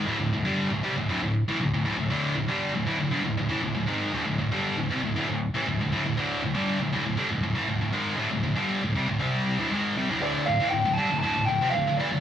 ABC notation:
X:1
M:4/4
L:1/16
Q:1/4=118
K:Dphr
V:1 name="Lead electric guitar"
z16 | z16 | z16 | z16 |
z16 | d2 f2 g2 a2 a2 g2 f2 d2 |]
V:2 name="Distorted electric guitar" clef=bass
[D,,A,,] [D,,A,,] [D,,A,,] [G,,D,G,]2 [D,,A,,] [C,G,] [D,,A,,] [D,,A,,] [D,,A,,]2 [A,,=E,] [D,,A,,] [D,,A,,] [D,,A,,] [D,,A,,] | [D,,A,,D,]2 [D,,A,,] [G,,D,G,]2 [D,,A,,] [D,,A,,] [D,,A,,] [G,,D,] [D,,A,,] [D,,A,,] [A,,=E,] [D,,A,,] [D,,A,,] [^G,,_E,^G,]2 | [D,,A,,] [D,,A,,] [D,,A,,] [G,,D,G,]2 [D,,A,,] [C,G,] [D,,A,,] [D,,A,,] [D,,A,,]2 [A,,=E,] [D,,A,,] [D,,A,,] [D,,A,,] [D,,A,,] | [D,,A,,D,]2 [D,,A,,] [G,,D,G,]2 [D,,A,,] [D,,A,,] [D,,A,,] [G,,D,] [D,,A,,] [D,,A,,] [A,,=E,] [D,,A,,] [D,,A,,] [^G,,_E,^G,]2 |
[D,,A,,] [D,,A,,] [D,,A,,] [G,,D,G,]2 [D,,A,,] [C,G,] [D,,A,,] [C,G,C]3 [D,,A,,] [^G,,E,^G,]2 [C,=G,] [D,,A,,] | [D,,A,,D,]2 [D,,A,,] [A,,=E,] [D,,A,,] [D,,A,,] [G,,D,] [D,,A,,] [D,,A,,] [D,,A,,] [D,,A,,] [F,,C,] [D,,A,,] [D,,A,,] [A,,E,] [D,,A,,] |]